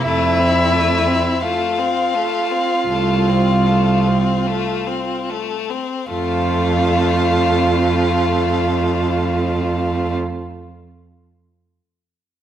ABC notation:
X:1
M:4/4
L:1/16
Q:1/4=38
K:F
V:1 name="Violin"
e4 f8- f2 z2 | f16 |]
V:2 name="Viola"
E4 F8- F2 z2 | F16 |]
V:3 name="Violin"
A, C A, C A, C A, C A, C A, C A, C A, C | A,16 |]
V:4 name="Cello" clef=bass
F,,4 z4 C,,4 z4 | F,,16 |]